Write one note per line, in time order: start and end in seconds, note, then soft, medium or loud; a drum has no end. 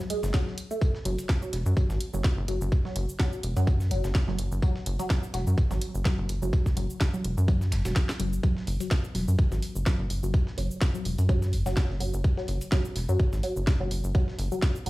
0.10 0.13 G#3 loud
0.10 closed hi-hat loud
0.10 tambourine medium
0.23 0.32 F#1 loud
0.23 snare medium
0.23 shaker soft
0.34 0.36 F#3 loud
0.34 kick loud
0.34 snare medium
0.34 snare loud
0.34 tambourine medium
0.47 snare soft
0.58 closed hi-hat loud
0.58 tambourine medium
0.71 0.73 A3 medium
0.71 shaker medium
0.81 kick loud
0.81 tambourine medium
0.95 snare soft
1.05 1.16 F#1 loud
1.05 1.10 F#3 medium
1.05 closed hi-hat loud
1.05 tambourine medium
1.18 closed hi-hat soft
1.18 shaker medium
1.29 kick loud
1.29 snare medium
1.29 snare loud
1.29 tambourine medium
1.42 1.44 F#3 medium
1.42 shaker soft
1.53 1.63 E1 medium
1.53 snare soft
1.53 closed hi-hat medium
1.53 tambourine medium
1.66 1.75 F#2 loud
1.66 shaker medium
1.77 1.82 F#3 medium
1.77 kick loud
1.77 tambourine medium
1.90 1.98 G#1 loud
1.90 snare soft
1.90 shaker soft
2.00 closed hi-hat medium
2.00 tambourine medium
2.14 2.22 F#1 medium
2.14 2.18 F#3 medium
2.14 shaker medium
2.24 kick loud
2.24 snare loud
2.24 snare medium
2.24 tambourine medium
2.37 2.46 F#1 loud
2.48 2.59 F#1 medium
2.48 2.50 F#3 medium
2.48 closed hi-hat loud
2.48 tambourine medium
2.61 2.70 F#1 loud
2.61 shaker medium
2.72 kick loud
2.72 tambourine medium
2.85 2.89 F#3 medium
2.85 snare soft
2.96 3.06 F#1 loud
2.96 closed hi-hat medium
2.96 tambourine medium
3.09 shaker medium
3.20 3.25 F#3 medium
3.20 kick loud
3.20 snare medium
3.20 snare loud
3.20 tambourine medium
3.33 shaker soft
3.43 3.54 E1 medium
3.43 closed hi-hat medium
3.43 tambourine medium
3.57 3.93 F#2 medium
3.57 3.59 F#3 medium
3.57 closed hi-hat soft
3.57 shaker medium
3.67 kick loud
3.67 tambourine medium
3.80 snare soft
3.80 shaker soft
3.91 4.02 F#1 medium
3.91 3.96 F#3 medium
3.91 closed hi-hat medium
3.91 tambourine medium
4.04 4.13 F#1 medium
4.04 snare medium
4.04 shaker medium
4.15 kick loud
4.15 snare loud
4.15 snare medium
4.15 tambourine medium
4.28 4.37 F#1 loud
4.28 4.32 F#3 medium
4.28 snare soft
4.39 4.49 F#1 medium
4.39 closed hi-hat loud
4.39 tambourine medium
4.52 4.60 F#1 loud
4.52 shaker medium
4.62 4.64 F#3 medium
4.62 kick loud
4.62 tambourine medium
4.76 snare soft
4.86 4.97 F#1 loud
4.86 closed hi-hat medium
4.86 tambourine medium
4.99 5.03 F#3 medium
4.99 closed hi-hat soft
4.99 shaker medium
5.10 kick loud
5.10 snare loud
5.10 tambourine medium
5.23 shaker soft
5.34 5.44 E1 medium
5.34 5.39 F#3 medium
5.34 snare soft
5.34 closed hi-hat medium
5.34 tambourine medium
5.47 5.56 F#2 medium
5.47 shaker medium
5.58 kick loud
5.58 tambourine medium
5.71 5.79 G#1 loud
5.71 5.73 F#3 medium
5.71 snare soft
5.71 shaker soft
5.81 closed hi-hat medium
5.81 tambourine medium
5.95 6.03 F#1 medium
5.95 shaker medium
6.05 6.10 F#3 medium
6.05 kick loud
6.05 snare loud
6.05 snare medium
6.05 tambourine medium
6.18 6.27 F#1 loud
6.29 6.40 F#1 medium
6.29 closed hi-hat medium
6.29 tambourine medium
6.42 6.51 F#1 loud
6.42 6.46 F#3 medium
6.42 shaker medium
6.53 kick loud
6.53 tambourine medium
6.66 kick medium
6.66 snare soft
6.66 shaker soft
6.77 6.87 F#1 loud
6.77 6.79 F#3 medium
6.77 closed hi-hat medium
6.77 tambourine medium
6.90 shaker medium
7.00 kick loud
7.00 snare loud
7.00 tambourine medium
7.14 7.18 F#3 medium
7.14 shaker soft
7.24 7.35 E1 medium
7.24 closed hi-hat medium
7.37 7.73 F#2 medium
7.37 shaker medium
7.48 7.53 F#3 medium
7.48 kick loud
7.48 tambourine medium
7.61 snare soft
7.61 shaker soft
7.72 7.83 F#1 loud
7.72 snare loud
7.72 closed hi-hat medium
7.72 tambourine medium
7.85 7.94 E1 medium
7.85 7.87 F#3 medium
7.85 snare loud
7.85 tambourine medium
7.85 shaker medium
7.96 kick loud
7.96 snare loud
7.96 snare medium
7.96 tambourine medium
8.09 snare loud
8.09 snare medium
8.09 tambourine medium
8.09 shaker soft
8.20 8.39 F#1 medium
8.20 8.25 F#3 medium
8.20 closed hi-hat medium
8.20 tambourine medium
8.33 shaker medium
8.43 8.48 F#3 medium
8.43 kick loud
8.43 tambourine medium
8.57 snare soft
8.67 8.78 F#1 loud
8.67 open hi-hat medium
8.67 tambourine medium
8.80 8.84 F#3 medium
8.80 closed hi-hat soft
8.80 shaker medium
8.91 kick loud
8.91 snare loud
8.91 tambourine medium
9.04 shaker soft
9.15 9.25 E1 medium
9.15 9.17 F#3 medium
9.15 snare soft
9.15 open hi-hat medium
9.15 tambourine medium
9.28 9.37 F#2 medium
9.28 shaker medium
9.39 kick loud
9.39 tambourine medium
9.52 9.60 G#1 loud
9.52 9.56 F#3 medium
9.52 snare soft
9.52 shaker soft
9.62 open hi-hat medium
9.62 tambourine medium
9.76 9.84 F#1 medium
9.76 shaker medium
9.86 9.91 F#3 medium
9.86 kick loud
9.86 snare loud
9.86 tambourine medium
9.99 10.08 F#1 loud
10.10 10.21 F#1 medium
10.10 open hi-hat medium
10.10 tambourine medium
10.23 10.32 F#1 loud
10.23 10.25 F#3 medium
10.23 shaker medium
10.34 kick loud
10.34 tambourine medium
10.47 snare soft
10.58 10.68 F#1 loud
10.58 10.63 F#3 medium
10.58 open hi-hat medium
10.58 tambourine medium
10.71 shaker medium
10.81 kick loud
10.81 snare loud
10.81 tambourine medium
10.95 10.99 F#3 medium
10.95 shaker soft
11.05 11.16 E1 medium
11.05 open hi-hat medium
11.05 tambourine medium
11.18 11.54 F#2 medium
11.18 closed hi-hat soft
11.18 shaker medium
11.29 11.31 F#3 medium
11.29 kick loud
11.29 tambourine medium
11.42 snare soft
11.42 shaker soft
11.53 11.64 F#1 medium
11.53 open hi-hat medium
11.53 tambourine medium
11.66 11.75 F#1 loud
11.66 11.70 F#3 medium
11.66 snare medium
11.66 shaker medium
11.77 kick loud
11.77 snare loud
11.77 tambourine medium
11.90 11.98 F#1 loud
11.90 snare soft
12.00 12.11 F#1 medium
12.00 12.06 F#3 medium
12.00 open hi-hat medium
12.00 tambourine medium
12.14 12.22 F#1 loud
12.14 shaker medium
12.24 kick loud
12.24 tambourine medium
12.37 12.39 F#3 medium
12.37 snare soft
12.48 12.59 F#1 loud
12.48 open hi-hat medium
12.48 tambourine medium
12.61 closed hi-hat soft
12.61 shaker medium
12.72 12.77 F#3 medium
12.72 kick loud
12.72 snare loud
12.72 tambourine medium
12.85 shaker soft
12.96 13.06 E1 medium
12.96 snare soft
12.96 open hi-hat medium
12.96 tambourine medium
13.09 13.17 F#2 medium
13.09 13.13 F#3 medium
13.09 shaker medium
13.20 kick loud
13.20 tambourine medium
13.33 13.41 G#1 loud
13.33 snare soft
13.33 shaker soft
13.43 13.45 F#3 medium
13.43 open hi-hat medium
13.43 tambourine medium
13.56 13.65 F#1 medium
13.56 shaker medium
13.67 kick loud
13.67 snare medium
13.67 snare loud
13.67 tambourine medium
13.80 13.89 F#1 loud
13.80 13.84 F#3 medium
13.91 14.02 F#1 medium
13.91 open hi-hat medium
13.91 tambourine medium
14.04 14.13 F#1 loud
14.04 shaker medium
14.15 14.20 F#3 medium
14.15 kick loud
14.15 tambourine medium
14.28 snare soft
14.39 14.49 F#1 loud
14.39 open hi-hat medium
14.39 tambourine medium
14.52 14.54 F#3 medium
14.52 shaker medium
14.62 kick loud
14.62 snare loud
14.62 tambourine medium
14.76 shaker soft
14.86 14.90 E1 medium
14.86 14.90 F#3 medium
14.86 open hi-hat medium
14.86 tambourine medium